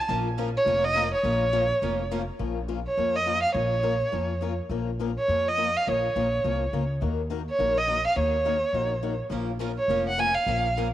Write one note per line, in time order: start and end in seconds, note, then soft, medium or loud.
0.01 0.11 A5 medium
0.08 0.55 A#1 medium
0.08 0.27 F3 medium
0.08 0.27 A#3 medium
0.08 0.27 C#4 medium
0.08 0.28 F4 medium
0.08 0.28 A#4 medium
0.38 0.48 F3 medium
0.38 0.48 A#3 medium
0.38 0.48 C#4 loud
0.38 0.49 F4 medium
0.38 0.49 A#4 loud
0.57 0.86 C#5 medium
0.64 1.12 F1 medium
0.64 0.84 F3 medium
0.64 0.84 A#3 medium
0.64 0.84 C#4 medium
0.64 0.85 F4 medium
0.64 0.85 A#4 medium
0.85 1.12 D#5 loud
0.95 1.05 F3 medium
0.95 1.05 A#3 medium
0.95 1.06 C#4 medium
0.95 1.05 F4 medium
0.95 1.06 A#4 medium
1.14 2.08 C#5 medium
1.23 1.70 A#1 medium
1.23 1.42 F3 medium
1.23 1.43 A#3 medium
1.23 1.43 C#4 medium
1.23 1.43 F4 medium
1.23 1.43 A#4 medium
1.53 1.63 F3 medium
1.53 1.63 A#3 medium
1.53 1.63 C#4 medium
1.53 1.63 F4 loud
1.53 1.64 A#4 loud
1.82 2.28 F1 medium
1.82 2.01 F3 medium
1.82 2.01 A#3 medium
1.82 2.01 C#4 medium
1.82 2.02 F4 medium
1.82 2.02 A#4 medium
2.11 2.21 F3 medium
2.11 2.21 A#3 medium
2.11 2.22 C#4 medium
2.11 2.21 F4 medium
2.11 2.22 A#4 medium
2.39 2.86 A#1 medium
2.39 2.58 F3 medium
2.39 2.58 A#3 medium
2.39 2.58 C#4 medium
2.39 2.58 F4 medium
2.39 2.59 A#4 medium
2.68 2.79 F3 medium
2.68 2.79 A#3 medium
2.68 2.79 C#4 medium
2.68 2.79 F4 medium
2.68 2.79 A#4 medium
2.87 3.17 C#5 medium
2.97 3.43 F2 medium
2.97 3.16 F3 medium
2.97 3.16 A#3 medium
2.97 3.17 C#4 medium
2.97 3.17 F4 medium
2.97 3.17 A#4 medium
3.16 3.42 D#5 loud
3.26 3.37 F3 medium
3.26 3.36 A#3 medium
3.26 3.36 C#4 loud
3.26 3.37 F4 loud
3.26 3.37 A#4 medium
3.43 3.54 F5 medium
3.54 4.01 A#1 medium
3.54 3.73 F3 medium
3.54 3.73 A#3 medium
3.54 3.73 C#4 medium
3.54 3.74 F4 medium
3.54 3.74 A#4 medium
3.54 4.54 C#5 medium
3.83 3.94 F3 medium
3.83 3.94 A#3 medium
3.83 3.94 C#4 medium
3.83 3.94 F4 medium
3.83 3.94 A#4 loud
4.12 4.59 F2 medium
4.12 4.31 F3 medium
4.12 4.31 A#3 medium
4.12 4.31 C#4 medium
4.12 4.31 F4 medium
4.12 4.32 A#4 medium
4.41 4.51 F3 medium
4.41 4.52 A#3 medium
4.41 4.52 C#4 medium
4.41 4.52 F4 loud
4.41 4.52 A#4 medium
4.69 5.16 A#1 medium
4.69 4.89 F3 medium
4.69 4.89 A#3 medium
4.69 4.89 C#4 medium
4.69 4.90 F4 medium
4.69 4.89 A#4 medium
4.99 5.10 F3 medium
4.99 5.10 A#3 medium
4.99 5.10 C#4 medium
4.99 5.10 F4 medium
4.99 5.11 A#4 loud
5.19 5.50 C#5 medium
5.28 5.74 F2 medium
5.28 5.47 F3 medium
5.28 5.47 A#3 medium
5.28 5.47 C#4 medium
5.28 5.48 F4 medium
5.28 5.48 A#4 medium
5.48 5.78 D#5 loud
5.57 5.67 F3 medium
5.57 5.67 A#3 medium
5.57 5.68 C#4 medium
5.57 5.68 F4 medium
5.57 5.68 A#4 medium
5.77 5.87 F5 loud
5.87 6.10 A#1 medium
5.87 6.05 F3 medium
5.87 6.05 A#3 medium
5.87 6.05 C#4 medium
5.87 6.05 F4 medium
5.87 6.06 A#4 medium
5.91 6.87 C#5 medium
6.16 6.40 A#1 medium
6.16 6.25 F3 medium
6.16 6.25 A#3 medium
6.16 6.26 C#4 medium
6.16 6.26 F4 loud
6.16 6.26 A#4 loud
6.44 6.68 C2 medium
6.44 6.62 F3 medium
6.44 6.63 A#3 medium
6.44 6.63 C#4 medium
6.44 6.63 F4 medium
6.44 6.63 A#4 medium
6.73 6.97 C#2 medium
6.73 6.83 F3 medium
6.73 6.83 A#3 medium
6.73 6.83 C#4 medium
6.73 6.83 F4 medium
6.73 6.83 A#4 medium
7.01 7.47 D#2 medium
7.01 7.20 D#3 medium
7.01 7.20 A#3 medium
7.01 7.20 D#4 medium
7.01 7.20 F#4 medium
7.01 7.21 A#4 medium
7.30 7.40 D#3 medium
7.30 7.40 A#3 medium
7.30 7.40 D#4 loud
7.30 7.40 F#4 medium
7.30 7.41 A#4 medium
7.50 7.79 C#5 medium
7.59 8.05 A#1 medium
7.59 7.77 D#3 medium
7.59 7.78 A#3 medium
7.59 7.78 D#4 medium
7.59 7.78 F#4 medium
7.59 7.78 A#4 medium
7.78 8.05 D#5 medium
7.87 7.97 D#3 medium
7.87 7.98 A#3 medium
7.87 7.98 D#4 medium
7.87 7.98 F#4 loud
7.87 7.98 A#4 medium
8.07 8.17 F5 medium
8.15 8.62 D#2 medium
8.15 8.35 D#3 medium
8.15 8.35 A#3 medium
8.15 8.35 D#4 medium
8.15 8.35 F#4 medium
8.15 8.35 A#4 medium
8.15 9.17 C#5 medium
8.45 8.55 D#3 medium
8.45 8.56 A#3 medium
8.45 8.56 D#4 medium
8.45 8.56 F#4 medium
8.45 8.56 A#4 loud
8.73 9.19 A#1 medium
8.73 8.93 D#3 medium
8.73 8.93 A#3 medium
8.73 8.93 D#4 medium
8.73 8.93 F#4 medium
8.73 8.93 A#4 medium
9.03 9.13 D#3 medium
9.03 9.13 A#3 medium
9.03 9.13 D#4 medium
9.03 9.13 F#4 medium
9.03 9.14 A#4 medium
9.30 9.77 A#1 medium
9.30 9.49 F3 medium
9.30 9.49 A#3 medium
9.30 9.50 C#4 medium
9.30 9.50 F4 medium
9.30 9.50 A#4 medium
9.59 9.70 F3 medium
9.59 9.70 A#3 medium
9.59 9.70 C#4 loud
9.59 9.71 F4 medium
9.59 9.71 A#4 medium
9.79 10.05 C#5 medium
9.88 10.35 F1 medium
9.88 10.08 F3 medium
9.88 10.08 A#3 medium
9.88 10.08 C#4 medium
9.88 10.08 F4 medium
9.88 10.09 A#4 medium
10.09 10.21 F#5 medium
10.18 10.28 F3 medium
10.18 10.28 A#3 medium
10.18 10.29 C#4 medium
10.18 10.29 F4 medium
10.18 10.29 A#4 medium
10.18 10.36 G#5 loud
10.35 10.76 F5 medium
10.46 10.93 A#1 medium
10.46 10.66 F3 medium
10.46 10.65 A#3 medium
10.46 10.66 C#4 medium
10.46 10.66 F4 medium
10.46 10.66 A#4 medium
10.77 10.87 F3 medium
10.77 10.87 A#3 loud
10.77 10.87 C#4 medium
10.77 10.87 F4 medium
10.77 10.87 A#4 loud